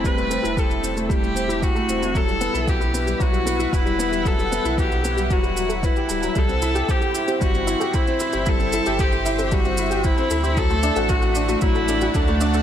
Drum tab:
SH |xxxxxxxxxxxxxxxx|xxxxxxxxxxxxxxxx|xxxxxxxxxxxxxxxx|xxxxxxxxxxxxxxxx|
BD |o---o---o---o---|o---o---o---o---|o---o---o---o---|o---o---o---o---|

SH |xxxxxxxxxxxxxxxx|xxxxxxxxxxxxxxxx|
BD |o---o---o---o---|o---o---o---o---|